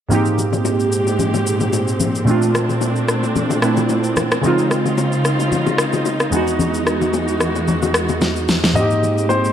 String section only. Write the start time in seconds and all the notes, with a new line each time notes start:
0.11 A#2 G#3 C4 G4
2.27 A3 D4
4.44 C#3 D#4 F4
6.32 E3 G#3 F#4
8.76 A#2 G#3 C4 G4